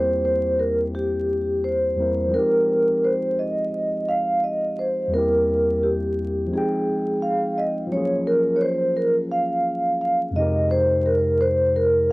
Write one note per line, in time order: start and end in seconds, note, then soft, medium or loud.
0.00 1.92 E2 medium
0.00 1.93 G3 soft
0.00 1.94 A#3 medium
0.00 1.95 C4 medium
0.00 1.96 E4 medium
0.00 2.00 G4 medium
0.00 0.22 C5 medium
0.25 0.60 C5 medium
0.59 0.75 A#4 medium
0.95 1.66 G4 medium
1.64 2.35 C5 medium
1.96 2.32 E2 soft
1.96 2.32 G3 soft
1.96 2.33 A#3 soft
1.96 2.33 C4 soft
2.00 2.34 E4 soft
2.00 2.34 A#4 soft
2.29 5.06 F3 medium
2.29 5.07 G#3 medium
2.34 5.08 C4 soft
2.34 5.10 D#4 medium
2.34 3.05 A#4 loud
2.39 5.11 G4 medium
3.04 3.39 C5 medium
3.39 4.10 D#5 medium
4.09 4.44 F5 medium
4.44 4.79 D#5 medium
4.79 5.10 C5 medium
5.07 6.46 E2 medium
5.07 6.47 G3 medium
5.12 6.49 A#3 soft
5.12 6.50 C4 medium
5.12 5.85 A#4 medium
5.16 6.51 E4 medium
5.16 6.52 G4 medium
5.83 6.54 G4 medium
6.47 7.86 F3 medium
6.47 7.87 G#3 medium
6.53 7.89 C4 medium
6.53 7.90 D#4 medium
6.53 7.53 G#4 medium
6.58 7.91 G5 medium
7.22 7.58 F5 medium
7.58 7.73 D#5 medium
7.87 10.29 F3 medium
7.87 10.30 F#3 soft
7.91 7.99 G#3 soft
7.91 10.32 C#4 medium
7.91 8.27 C#5 medium
7.95 10.34 A#3 medium
7.95 10.33 F4 medium
7.95 10.34 G#4 medium
8.27 8.57 A#4 loud
8.56 8.61 C#5 medium
8.62 8.97 C5 medium
8.97 9.12 A#4 medium
9.32 9.97 F5 medium
10.01 10.17 F5 medium
10.31 12.12 F2 medium
10.31 12.12 G#3 medium
10.35 12.12 C3 medium
10.35 12.12 D#4 medium
10.35 10.72 D#5 medium
10.39 12.12 G4 medium
10.39 12.12 A#4 medium
10.71 11.06 C5 loud
11.06 11.41 A#4 medium
11.41 11.76 C5 loud
11.76 12.11 A#4 loud